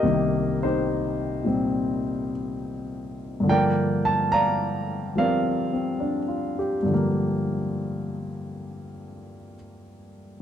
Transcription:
0.00 3.47 C2 soft
0.00 3.47 C3 soft
0.00 3.48 D#3 soft
0.00 0.63 G4 medium
0.00 3.49 A#4 medium
0.00 3.49 D#5 medium
0.00 3.50 F5 medium
0.00 3.49 G5 medium
0.05 3.48 A#3 medium
0.63 2.31 D#4 soft
0.63 2.31 G4 soft
0.63 2.30 C5 medium
1.44 3.46 A#2 soft
1.44 3.47 G3 soft
1.44 3.48 C4 soft
3.40 6.81 G2 medium
3.40 6.85 D3 medium
3.47 5.14 F3 soft
3.47 6.92 A#3 medium
3.47 5.14 A#4 medium
3.47 4.32 D5 medium
3.47 3.62 G5 medium
4.05 4.11 A5 medium
4.32 5.17 D5 medium
4.32 5.17 F5 medium
4.32 5.19 A#5 medium
5.15 6.88 F3 soft
5.15 6.90 G3 soft
5.15 5.72 C4 soft
5.15 9.54 A#4 medium
5.15 9.54 D5 medium
5.15 9.54 F5 medium
5.73 6.19 C4 soft
6.00 6.56 D4 soft
6.28 6.75 F4 soft
6.59 7.05 G4 medium
6.83 10.42 G2 soft
6.83 10.42 D3 soft
6.90 10.42 F3 soft
6.90 10.42 A#3 medium

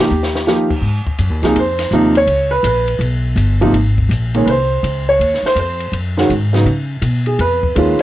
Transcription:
0.00 0.44 G4 medium
0.10 0.80 D#2 medium
0.23 snare medium
0.35 snare medium
0.47 0.68 F3 medium
0.47 0.69 A#3 soft
0.47 0.69 D#4 medium
0.47 0.69 G4 medium
0.47 snare soft
0.70 kick medium
0.70 crash medium
0.81 1.04 G#2 medium
1.06 muted upright bass stroke soft
1.06 kick soft
1.18 1.30 F#2 medium
1.18 hi-hat pedal medium
1.18 ride medium
1.30 1.42 D#2 medium
1.42 1.54 C2 medium
1.42 1.55 C3 medium
1.42 1.55 F3 soft
1.42 1.55 A#3 medium
1.42 1.56 D#4 medium
1.42 1.56 G#4 medium
1.42 snare soft
1.42 ride soft
1.55 1.90 F2 medium
1.55 ride medium
1.59 2.14 C5 medium
1.79 snare soft
1.79 ride medium
1.91 2.26 D#2 medium
1.91 2.14 C3 medium
1.91 2.14 F3 medium
1.91 2.14 A#3 medium
1.91 2.15 D#4 medium
1.91 hi-hat pedal soft
2.15 2.51 C#5 loud
2.15 ride soft
2.27 2.62 C#2 medium
2.27 ride medium
2.51 2.64 B4 medium
2.63 2.98 A#1 medium
2.63 3.00 B4 medium
2.63 hi-hat pedal medium
2.63 ride medium
2.88 ride soft
2.99 3.35 B1 medium
2.99 ride medium
3.36 3.72 G1 medium
3.36 hi-hat pedal medium
3.36 ride medium
3.61 3.73 C3 medium
3.61 3.73 F3 medium
3.61 3.73 A#3 medium
3.61 3.74 D#4 medium
3.61 ride soft
3.73 4.08 G#1 medium
3.73 ride medium
3.98 kick medium
4.09 4.45 A#1 medium
4.09 hi-hat pedal medium
4.09 ride medium
4.34 4.46 A#2 medium
4.34 4.46 D#3 soft
4.34 4.47 G#3 medium
4.34 4.47 C#4 medium
4.34 4.48 G#4 medium
4.34 ride soft
4.46 4.82 C2 medium
4.46 4.48 B4 medium
4.46 ride medium
4.50 5.05 C5 medium
4.83 5.19 C#2 medium
4.83 hi-hat pedal soft
4.83 ride medium
5.09 5.42 C#5 medium
5.20 5.42 D#2 medium
5.20 ride medium
5.34 snare soft
5.43 5.58 C5 medium
5.43 muted upright bass stroke soft
5.43 snare soft
5.55 5.91 F2 medium
5.55 5.92 C5 medium
5.55 hi-hat pedal soft
5.55 ride medium
5.80 ride soft
5.92 6.28 F#2 medium
5.92 ride medium
6.17 6.28 D#3 medium
6.17 6.29 G#3 medium
6.17 6.29 C#4 medium
6.17 6.29 F#4 medium
6.17 snare medium
6.29 6.64 G#2 medium
6.29 hi-hat pedal soft
6.29 ride medium
6.53 6.64 C#3 medium
6.53 6.65 F#3 soft
6.53 6.65 B3 soft
6.53 6.65 D#4 medium
6.53 snare soft
6.53 ride soft
6.65 7.01 C#3 medium
6.65 ride soft
7.02 7.37 B2 medium
7.02 hi-hat pedal medium
7.02 ride medium
7.26 7.39 G#4 medium
7.26 ride soft
7.38 7.74 F2 medium
7.38 7.96 B4 medium
7.38 ride medium
7.63 kick medium
7.75 7.98 D#2 medium
7.75 8.02 D#3 medium
7.75 8.02 G#3 medium
7.75 8.02 C#4 medium
7.75 8.02 F4 medium
7.75 hi-hat pedal soft
7.75 ride medium
7.99 ride soft

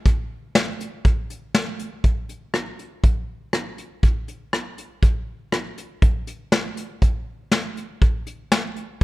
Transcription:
0.06 kick loud
0.06 closed hi-hat medium
0.55 snare loud
0.55 closed hi-hat medium
0.80 closed hi-hat medium
1.05 kick loud
1.05 closed hi-hat medium
1.30 closed hi-hat medium
1.55 snare loud
1.55 closed hi-hat medium
1.79 closed hi-hat medium
2.04 kick loud
2.04 closed hi-hat medium
2.29 closed hi-hat medium
2.54 cross-stick loud
2.54 closed hi-hat medium
2.79 closed hi-hat medium
3.04 kick loud
3.04 closed hi-hat medium
3.53 cross-stick loud
3.53 closed hi-hat medium
3.78 closed hi-hat medium
4.03 kick loud
4.03 closed hi-hat medium
4.28 closed hi-hat medium
4.53 cross-stick loud
4.53 closed hi-hat medium
4.78 closed hi-hat medium
5.02 kick loud
5.02 closed hi-hat medium
5.52 cross-stick loud
5.52 closed hi-hat medium
5.78 closed hi-hat medium
6.02 kick loud
6.02 closed hi-hat medium
6.27 closed hi-hat medium
6.52 snare loud
6.52 closed hi-hat medium
6.77 closed hi-hat medium
7.02 kick loud
7.02 closed hi-hat medium
7.52 snare loud
7.52 closed hi-hat medium
7.77 closed hi-hat medium
8.02 kick loud
8.02 closed hi-hat medium
8.27 closed hi-hat medium
8.52 snare loud
8.52 closed hi-hat medium
8.76 closed hi-hat soft

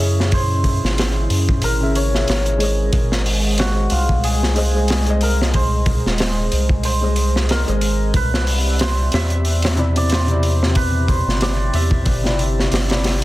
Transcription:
0.00 0.79 F#2 loud
0.00 1.75 C#3 medium
0.00 1.76 C#4 medium
0.00 2.88 C#4 medium
0.00 2.88 E4 medium
0.00 1.77 G#4 medium
0.00 8.10 G#4 medium
0.00 0.39 C#5 loud
0.00 1.41 D#5 loud
0.00 1.78 E5 loud
0.20 snare soft
0.32 2.02 C5 loud
0.32 kick loud
0.32 open hi-hat medium
0.64 kick loud
0.64 open hi-hat medium
0.83 1.27 G#1 medium
0.83 snare soft
0.98 snare loud
0.98 open hi-hat medium
1.30 1.62 F#2 loud
1.30 open hi-hat medium
1.49 kick loud
1.62 2.25 G#1 medium
1.62 4.47 A#4 loud
1.62 open hi-hat medium
1.80 2.09 C#3 medium
1.80 2.09 C#4 medium
1.80 2.10 G#4 medium
1.80 2.11 E5 medium
1.95 4.51 C#5 medium
1.95 open hi-hat medium
2.12 2.56 C#3 medium
2.12 2.57 C#4 medium
2.12 2.57 G#4 medium
2.12 2.58 E5 medium
2.12 snare soft
2.28 2.90 G#1 medium
2.28 snare loud
2.28 open hi-hat medium
2.46 closed hi-hat soft
2.57 4.51 G#3 medium
2.57 4.52 G#4 medium
2.57 open hi-hat medium
2.62 4.53 C5 medium
2.62 4.54 D#5 medium
2.93 3.88 G#1 loud
2.93 8.11 G#3 medium
2.93 8.11 C5 medium
2.93 8.11 D#5 medium
2.93 kick loud
2.93 open hi-hat medium
3.12 snare soft
3.26 open hi-hat medium
3.58 3.97 F#4 medium
3.58 snare loud
3.58 open hi-hat medium
3.90 6.01 C2 loud
3.90 4.00 F4 medium
3.90 open hi-hat medium
4.09 kick medium
4.24 7.27 G#4 medium
4.24 open hi-hat medium
4.43 snare soft
4.55 4.68 G#3 medium
4.55 4.69 G#4 medium
4.55 4.70 C5 medium
4.55 4.70 D#5 medium
4.55 open hi-hat medium
4.73 5.02 G#3 medium
4.73 5.02 G#4 medium
4.73 5.03 C5 medium
4.73 5.03 D#5 medium
4.88 snare loud
4.88 open hi-hat medium
5.04 6.96 G#3 medium
5.04 6.98 G#4 medium
5.04 closed hi-hat soft
5.08 6.98 C5 medium
5.08 7.00 D#5 loud
5.21 5.31 A#4 medium
5.21 open hi-hat medium
5.42 snare medium
5.54 6.85 C5 loud
5.54 kick loud
5.54 open hi-hat medium
5.86 kick loud
5.86 open hi-hat medium
6.06 6.49 D#1 medium
6.06 snare soft
6.18 snare loud
6.18 open hi-hat medium
6.52 7.64 C2 loud
6.52 open hi-hat medium
6.69 kick medium
6.83 8.22 C5 loud
6.83 open hi-hat medium
7.01 7.62 G#3 medium
7.01 7.63 G#4 medium
7.01 7.63 C5 medium
7.01 7.64 D#5 medium
7.16 open hi-hat medium
7.36 snare soft
7.49 8.22 A#4 loud
7.49 snare loud
7.49 open hi-hat medium
7.66 8.12 G#1 loud
7.66 8.12 G#3 loud
7.66 8.12 G#4 medium
7.66 8.13 C5 medium
7.66 8.14 D#5 loud
7.66 closed hi-hat soft
7.81 open hi-hat medium
8.13 9.10 C2 loud
8.13 13.24 C4 medium
8.13 13.24 G4 medium
8.13 8.87 B4 loud
8.13 10.72 D5 medium
8.13 13.24 E5 medium
8.13 kick loud
8.13 open hi-hat medium
8.34 snare soft
8.47 open hi-hat medium
8.79 8.89 C5 loud
8.79 snare loud
8.79 open hi-hat loud
9.12 11.23 E2 loud
9.12 11.44 E5 loud
9.12 snare loud
9.12 open hi-hat medium
9.30 closed hi-hat soft
9.45 open hi-hat medium
9.62 snare loud
9.62 open hi-hat medium
9.76 9.90 C3 medium
9.76 9.90 C4 medium
9.76 9.91 E4 medium
9.76 9.91 D5 medium
9.76 closed hi-hat soft
9.94 10.23 C3 medium
9.94 10.24 C4 medium
9.94 10.24 E4 medium
9.94 11.42 D5 loud
9.94 10.25 D5 medium
9.94 open hi-hat medium
10.10 10.82 C5 loud
10.10 snare loud
10.10 open hi-hat loud
10.25 12.18 C3 loud
10.25 12.19 C4 medium
10.25 closed hi-hat soft
10.29 12.20 E4 medium
10.29 12.21 D5 loud
10.43 open hi-hat medium
10.63 snare soft
10.75 11.15 B4 loud
10.75 13.24 D5 medium
10.75 kick loud
10.75 open hi-hat loud
11.08 13.24 C5 loud
11.08 kick medium
11.08 open hi-hat medium
11.27 11.71 G1 medium
11.27 snare soft
11.41 13.24 D5 loud
11.41 snare loud
11.41 open hi-hat medium
11.74 12.06 E2 loud
11.74 13.24 E5 loud
11.74 open hi-hat medium
11.91 kick medium
12.05 12.68 G1 medium
12.05 kick loud
12.05 open hi-hat medium
12.23 12.85 C3 medium
12.23 12.85 C4 medium
12.23 12.85 E4 medium
12.23 12.86 D5 medium
12.23 snare soft
12.39 open hi-hat medium
12.59 snare soft
12.72 13.24 G1 medium
12.72 snare loud
12.72 open hi-hat medium
12.88 13.24 C3 medium
12.88 13.24 C4 medium
12.88 13.24 E4 medium
12.88 13.24 D5 loud
12.88 snare loud
12.88 open hi-hat medium
13.04 snare loud
13.04 open hi-hat medium

